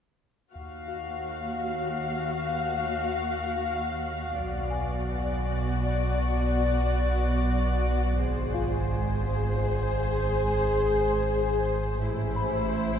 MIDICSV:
0, 0, Header, 1, 6, 480
1, 0, Start_track
1, 0, Key_signature, -6, "minor"
1, 0, Tempo, 500000
1, 12473, End_track
2, 0, Start_track
2, 0, Title_t, "Celesta"
2, 0, Program_c, 0, 8
2, 697, Control_c, 0, 64, 127
2, 844, Note_on_c, 0, 66, 16
2, 848, Note_on_c, 0, 77, 16
2, 2642, Note_off_c, 0, 66, 0
2, 2644, Note_off_c, 0, 77, 0
2, 4229, Control_c, 0, 64, 0
2, 4371, Control_c, 0, 64, 127
2, 4516, Note_on_c, 0, 80, 23
2, 6316, Note_off_c, 0, 80, 0
2, 7906, Control_c, 0, 64, 0
2, 8060, Control_c, 0, 64, 127
2, 8198, Note_on_c, 0, 77, 26
2, 8200, Note_on_c, 0, 65, 24
2, 9995, Note_off_c, 0, 77, 0
2, 9996, Note_off_c, 0, 65, 0
2, 11581, Control_c, 0, 64, 0
2, 11715, Control_c, 0, 64, 127
2, 11864, Note_on_c, 0, 72, 23
2, 11868, Note_on_c, 0, 83, 25
2, 12473, Note_off_c, 0, 72, 0
2, 12473, Note_off_c, 0, 83, 0
2, 12473, End_track
3, 0, Start_track
3, 0, Title_t, "Violin section"
3, 0, Program_c, 1, 48
3, 525, Note_on_c, 1, 66, 30
3, 526, Note_on_c, 1, 77, 31
3, 4167, Note_off_c, 1, 66, 0
3, 4168, Note_off_c, 1, 77, 0
3, 4207, Note_on_c, 1, 66, 32
3, 4208, Note_on_c, 1, 74, 32
3, 7847, Note_off_c, 1, 66, 0
3, 7847, Note_off_c, 1, 74, 0
3, 7888, Note_on_c, 1, 72, 44
3, 7890, Note_on_c, 1, 68, 40
3, 11525, Note_off_c, 1, 72, 0
3, 11526, Note_off_c, 1, 68, 0
3, 11565, Note_on_c, 1, 64, 41
3, 11566, Note_on_c, 1, 72, 43
3, 12473, Note_off_c, 1, 64, 0
3, 12473, Note_off_c, 1, 72, 0
3, 12473, End_track
4, 0, Start_track
4, 0, Title_t, "Cello section"
4, 0, Program_c, 2, 48
4, 534, Note_on_c, 2, 39, 26
4, 4172, Note_off_c, 2, 39, 0
4, 4216, Note_on_c, 2, 47, 29
4, 7851, Note_off_c, 2, 47, 0
4, 7892, Note_on_c, 2, 44, 35
4, 11528, Note_off_c, 2, 44, 0
4, 11565, Note_on_c, 2, 45, 42
4, 12473, Note_off_c, 2, 45, 0
4, 12473, End_track
5, 0, Start_track
5, 0, Title_t, "Double bass section"
5, 0, Program_c, 3, 48
5, 535, Note_on_c, 3, 39, 26
5, 4172, Note_off_c, 3, 39, 0
5, 4213, Note_on_c, 3, 35, 29
5, 7850, Note_off_c, 3, 35, 0
5, 7897, Note_on_c, 3, 32, 32
5, 11530, Note_off_c, 3, 32, 0
5, 11564, Note_on_c, 3, 33, 37
5, 12473, Note_off_c, 3, 33, 0
5, 12473, End_track
6, 0, Start_track
6, 0, Title_t, "Sub bass"
6, 0, Program_c, 4, 38
6, 531, Note_on_c, 4, 39, 48
6, 4213, Note_on_c, 4, 35, 45
6, 4228, Note_off_c, 4, 39, 0
6, 7894, Note_on_c, 4, 32, 54
6, 7909, Note_off_c, 4, 35, 0
6, 11559, Note_on_c, 4, 33, 55
6, 11574, Note_off_c, 4, 32, 0
6, 12473, Note_off_c, 4, 33, 0
6, 12473, End_track
0, 0, End_of_file